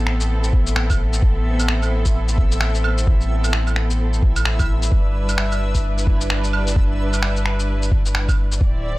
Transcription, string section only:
Already playing: B3 C4 A4
4.92 G3 D4 B4
8.60 D3 C4 D5

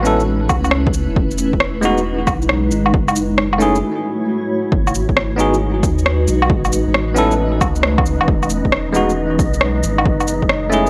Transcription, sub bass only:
Already playing: A1
0.50 C#2
1.09 E1
1.16 E1
1.53 E1
2.27 B1
2.72 G#1
2.94 F#1
3.31 F#1
4.72 G#1
5.09 G#1
5.83 D#2
6.28 B1
6.50 A1
6.87 A1
7.61 C#2
8.21 E1
8.28 E1
8.65 E1
9.39 B1
9.84 G#1
10.06 F#1
10.43 F#1

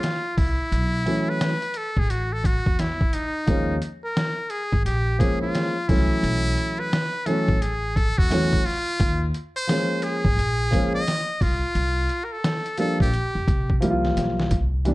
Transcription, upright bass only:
0.38 C2
0.72 B1
1.97 A1
2.66 E2
3.48 D#2
4.73 G#1
4.85 A#1
5.89 C2
6.23 B1
7.48 A1
8.18 E2
9.00 D#2
10.25 G#1
10.37 A#1
11.41 C2
11.75 C2
13.00 A#1
13.35 F2
13.48 C3
13.82 C2
14.17 B1
14.51 C2

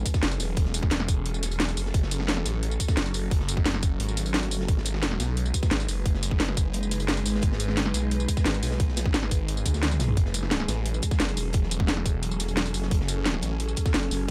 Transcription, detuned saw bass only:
0.23 F#1
0.40 E1
1.77 F#1
1.94 F#1
2.46 A1
2.97 F#1
3.14 F#1
3.66 F#1
4.00 G#1
4.48 G1
4.68 G#1
5.20 B1
5.71 G#1
5.88 F#1
7.26 G#1
7.43 G#1
7.94 B1
8.46 G#1
8.63 B1
9.14 G#1
9.66 D2
10.00 B1
10.17 F#1
10.68 A1
11.20 F#1
11.37 E1
12.74 F#1
12.91 F#1
13.43 A1
13.94 F#1
14.11 F#1

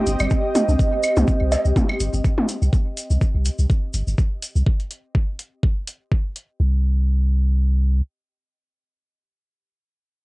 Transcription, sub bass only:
0.07 G1
0.20 G1
0.68 C2
1.17 C2
1.41 C2
1.65 C2
2.00 G1
2.14 G1
2.62 C2
3.10 C2
3.35 C2
3.59 C2
3.94 G1
4.07 G1
4.55 C2
6.60 C2

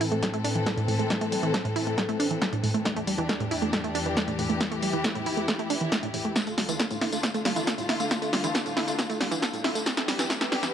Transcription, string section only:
Already playing: A2 E3 C4 A4
2.85 E2 E3 D4 G4
4.61 E4
6.36 D2 D3 A3 F4
9.86 G2 B3 G4

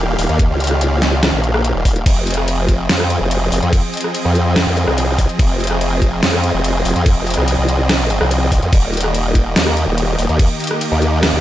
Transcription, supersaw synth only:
Already playing: D#3 A#3 G4 F5
2.06 F3 C4 G#4 D#5
8.73 D#3 A#3 G4

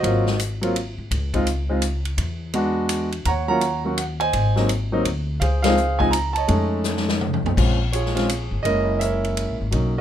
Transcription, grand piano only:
Already playing: F#4 C5 D#5
0.02 F#3 A#3 C4 F4
0.61 F#3 A#3 C4 F4
1.34 G#3 C4 D#4 F4
1.69 G#3 C4 D#4 F4
2.54 G#3 B3 D4 F#4
3.26 C#5 F#5 A#5
3.48 F#3 A#3 C#4 F4 C#5 F#5 A#5
3.85 F#3 A#3 C#4 F#4
3.98 F#5
4.20 C5 D#5 G#5
4.56 F#3 A#3 C4 D#4
4.92 F#3 A#3 C4 D#4
5.40 G#4 C5 F5
5.62 F3 G#3 C4 D#4 G#4 C5 F5
5.99 F3 G#3 C4 D#4 G#5
6.11 A#5
6.33 A5
6.37 C#5 D#5
6.48 G#3 A3 C#4 D#4
7.56 G#3 C4 C#4 F4
7.92 F4 G#4 C#5
8.15 G#3 C4 C#4 F4
8.63 G#3 A#3 C#4 E4 A#4 D#5
8.99 A#4 C#5 E5
9.71 F#3 A#3 C#4 D#4
9.98 F#4

